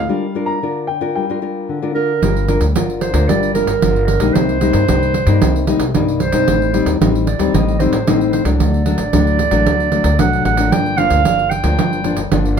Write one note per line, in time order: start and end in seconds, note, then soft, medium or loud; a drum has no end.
0.00 0.50 F5 medium
0.09 0.60 G3 soft
0.09 0.25 D4 medium
0.09 0.25 F4 soft
0.09 0.25 A#4 medium
0.35 0.58 D4 medium
0.35 0.58 F4 medium
0.35 0.58 A#4 medium
0.46 0.85 A#5 medium
0.63 1.13 D3 soft
0.63 0.88 D4 soft
0.63 0.88 F4 soft
0.63 0.88 A#4 medium
0.87 1.14 G5 medium
1.01 1.24 D4 medium
1.01 1.24 F4 medium
1.01 1.25 A#4 medium
1.15 1.67 G3 medium
1.15 1.92 G5 medium
1.30 1.39 D4 medium
1.30 1.39 F4 soft
1.30 1.39 A#4 medium
1.42 1.78 D4 soft
1.42 1.78 F4 soft
1.42 1.78 A#4 medium
1.69 2.20 D3 soft
1.82 1.92 D4 medium
1.82 1.92 F4 medium
1.82 1.92 A#4 medium
1.94 2.11 D4 soft
1.94 2.11 F4 soft
1.94 2.71 A#4 medium
1.94 2.11 A#4 medium
2.22 2.56 G1 medium
2.22 2.73 G3 soft
2.22 2.45 D4 soft
2.22 2.45 F4 medium
2.22 2.46 A#4 medium
2.22 pandeiro medium
2.36 pandeiro soft
2.48 2.64 D4 medium
2.48 2.65 F4 medium
2.48 2.65 A#4 medium
2.48 pandeiro medium
2.61 2.73 D2 medium
2.61 pandeiro medium
2.76 3.10 G1 medium
2.76 3.26 D3 medium
2.76 3.11 D4 soft
2.76 3.12 F4 soft
2.76 3.12 A#4 medium
2.76 pandeiro medium
2.90 pandeiro soft
3.01 3.30 C5 medium
3.01 pandeiro medium
3.14 3.26 D2 medium
3.14 3.50 D4 medium
3.14 3.51 F4 medium
3.14 3.51 A#4 medium
3.14 pandeiro medium
3.28 3.80 G3 soft
3.28 3.53 D5 loud
3.28 pandeiro medium
3.43 pandeiro soft
3.54 3.71 D4 soft
3.54 3.71 F4 medium
3.54 4.04 A#4 medium
3.54 3.71 A#4 medium
3.54 pandeiro soft
3.67 3.79 G1 medium
3.67 pandeiro medium
3.82 4.16 G1 medium
3.82 4.33 D3 medium
3.82 4.07 D4 medium
3.82 4.07 F4 medium
3.82 4.07 A#4 medium
3.82 pandeiro medium
3.96 pandeiro soft
4.06 4.35 A#4 medium
4.06 pandeiro medium
4.20 4.32 A#1 medium
4.20 4.57 G3 medium
4.20 4.57 A#3 medium
4.20 4.57 D#4 medium
4.20 pandeiro medium
4.33 4.69 C2 medium
4.33 4.86 C3 medium
4.33 5.93 C5 loud
4.33 pandeiro medium
4.49 pandeiro soft
4.61 4.84 G3 medium
4.61 4.84 A#3 soft
4.61 4.84 D#4 medium
4.61 pandeiro medium
4.73 4.86 G2 medium
4.73 pandeiro medium
4.88 5.22 C2 medium
4.88 5.39 G2 medium
4.88 5.13 G3 medium
4.88 5.14 A#3 soft
4.88 5.14 D#4 soft
4.88 pandeiro medium
5.03 pandeiro soft
5.14 pandeiro medium
5.27 5.39 G2 medium
5.27 5.63 G3 medium
5.27 5.64 A#3 medium
5.27 5.64 D#4 medium
5.27 pandeiro medium
5.42 5.76 C2 medium
5.42 5.92 C3 medium
5.42 pandeiro medium
5.56 pandeiro soft
5.67 5.84 G3 medium
5.67 5.84 A#3 soft
5.67 5.84 D#4 medium
5.67 pandeiro medium
5.80 5.92 C2 medium
5.80 pandeiro medium
5.94 6.28 C2 medium
5.94 6.45 G2 medium
5.94 6.20 G3 medium
5.94 6.20 A#3 medium
5.94 6.20 D#4 medium
5.94 pandeiro medium
6.08 pandeiro soft
6.20 6.96 C5 loud
6.20 pandeiro medium
6.32 6.45 C3 medium
6.32 6.69 G3 medium
6.32 6.69 C4 medium
6.32 6.70 D#4 medium
6.32 pandeiro medium
6.48 6.82 A1 medium
6.48 6.98 A2 medium
6.48 pandeiro medium
6.62 pandeiro soft
6.73 6.96 G3 medium
6.73 6.96 C4 medium
6.73 6.97 D#4 medium
6.73 pandeiro medium
6.86 6.98 D#2 medium
6.86 pandeiro medium
7.00 7.35 A1 medium
7.00 7.51 A2 soft
7.00 7.26 G3 soft
7.00 7.26 C4 medium
7.00 7.26 D#4 medium
7.00 pandeiro medium
7.15 pandeiro soft
7.26 7.56 D5 medium
7.26 pandeiro medium
7.39 7.51 D#2 medium
7.39 7.75 G3 medium
7.39 7.75 C4 medium
7.39 7.76 D#4 medium
7.39 pandeiro medium
7.54 7.88 A1 medium
7.54 8.04 A2 medium
7.54 7.81 D#5 medium
7.54 pandeiro medium
7.68 pandeiro soft
7.79 7.96 G3 medium
7.79 7.96 C4 medium
7.79 7.96 D#4 medium
7.79 8.32 C5 medium
7.79 pandeiro soft
7.92 8.04 A1 medium
7.92 pandeiro medium
8.07 8.41 A1 medium
8.07 8.57 A2 medium
8.07 8.42 G3 medium
8.07 8.43 C4 medium
8.07 8.43 D#4 medium
8.07 pandeiro medium
8.21 pandeiro soft
8.33 8.45 C5 medium
8.33 pandeiro medium
8.45 8.57 C#2 medium
8.45 8.81 F#3 medium
8.45 8.82 A3 medium
8.45 8.82 D4 medium
8.45 pandeiro medium
8.59 8.94 D2 medium
8.59 9.10 D3 soft
8.59 10.21 D5 loud
8.59 pandeiro medium
8.74 pandeiro soft
8.86 9.02 F#3 medium
8.86 9.02 A3 medium
8.86 9.02 D4 medium
8.86 pandeiro medium
8.98 9.10 A1 medium
8.98 pandeiro medium
9.13 9.47 D2 medium
9.13 9.64 A2 medium
9.13 9.38 F#3 medium
9.13 9.38 A3 soft
9.13 9.38 D4 medium
9.13 pandeiro medium
9.27 pandeiro soft
9.39 pandeiro medium
9.51 9.63 A1 medium
9.51 9.88 F#3 medium
9.51 9.88 A3 medium
9.51 9.88 D4 medium
9.51 pandeiro medium
9.66 10.00 D2 medium
9.66 10.17 D3 medium
9.66 pandeiro medium
9.80 pandeiro soft
9.92 10.08 F#3 soft
9.92 10.08 A3 medium
9.92 10.08 D4 medium
9.92 pandeiro medium
10.04 10.16 D2 medium
10.04 pandeiro medium
10.19 10.43 C2 medium
10.19 10.70 A2 medium
10.19 10.55 F#3 soft
10.19 10.55 A3 medium
10.19 10.55 D4 medium
10.19 10.44 F#5 medium
10.19 pandeiro medium
10.33 pandeiro soft
10.45 10.69 A1 medium
10.45 10.73 F#5 loud
10.45 pandeiro medium
10.57 10.94 F3 medium
10.57 10.94 A#3 medium
10.57 10.95 D4 medium
10.57 pandeiro medium
10.72 11.06 G1 medium
10.72 11.23 G2 medium
10.72 10.99 G5 loud
10.72 pandeiro medium
10.86 pandeiro soft
10.97 11.21 F3 medium
10.97 11.21 A#3 medium
10.97 11.21 D4 medium
10.97 11.52 F5 loud
10.97 pandeiro medium
11.10 11.23 D2 medium
11.10 pandeiro medium
11.25 11.60 G1 medium
11.25 11.76 D3 medium
11.25 11.50 F3 soft
11.25 11.51 A#3 soft
11.25 11.51 D4 soft
11.25 pandeiro medium
11.39 pandeiro soft
11.50 12.31 G5 medium
11.50 pandeiro medium
11.63 11.76 D2 medium
11.63 12.00 F3 medium
11.63 12.00 A#3 medium
11.63 12.00 D4 medium
11.63 pandeiro medium
11.79 12.13 G1 medium
11.79 12.29 G2 medium
11.79 pandeiro medium
11.93 pandeiro soft
12.04 12.21 F3 medium
12.04 12.21 A#3 medium
12.04 12.21 D4 medium
12.04 pandeiro medium
12.17 12.29 G1 medium
12.17 pandeiro medium
12.32 12.60 G1 medium
12.32 12.60 D3 medium
12.32 12.60 F3 medium
12.32 12.60 A#3 medium
12.32 12.60 D4 medium
12.32 pandeiro medium
12.46 pandeiro soft
12.57 12.60 F5 loud